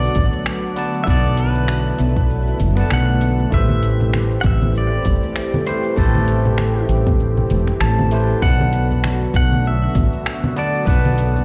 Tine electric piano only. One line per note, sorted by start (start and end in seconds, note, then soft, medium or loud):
0.00 0.11 B3 loud
0.00 0.12 B4 medium
0.00 0.12 D5 medium
0.00 0.13 F#5 medium
0.00 0.14 A5 loud
0.76 1.04 B3 medium
0.76 1.04 B4 medium
0.76 1.04 D5 medium
0.76 1.04 F#5 medium
0.76 1.05 A5 loud
1.05 2.56 B3 loud
1.05 2.57 B4 medium
1.05 2.57 D5 medium
1.05 2.58 F#5 medium
1.10 2.58 A5 loud
2.75 3.48 B3 medium
2.75 3.49 B4 medium
2.75 3.49 D5 medium
2.75 3.50 F#5 medium
2.81 3.51 A5 medium
3.50 5.01 A3 medium
3.50 5.02 E4 medium
3.50 5.03 G4 medium
3.50 5.03 B4 medium
3.55 5.04 C5 loud
5.66 5.94 A3 medium
5.66 5.94 E4 medium
5.66 5.94 G4 medium
5.66 5.95 B4 medium
5.66 5.95 C5 loud
5.96 7.46 A3 loud
5.96 7.47 E4 medium
5.96 7.47 G4 medium
5.96 7.48 B4 medium
6.01 7.49 C5 loud
8.12 8.39 A3 medium
8.12 8.39 E4 medium
8.12 8.40 G4 medium
8.12 8.40 B4 medium
8.12 8.40 C5 loud
8.41 9.91 B3 loud
8.41 9.92 B4 medium
8.41 9.93 D5 medium
8.41 9.93 F#5 medium
8.46 9.94 A5 loud
10.56 10.84 B3 medium
10.56 10.84 B4 medium
10.56 10.84 D5 medium
10.56 10.84 F#5 medium
10.56 10.85 A5 loud
10.85 11.45 B3 medium
10.85 11.45 B4 medium
10.85 11.45 D5 medium
10.85 11.45 F#5 medium
10.90 11.45 A5 loud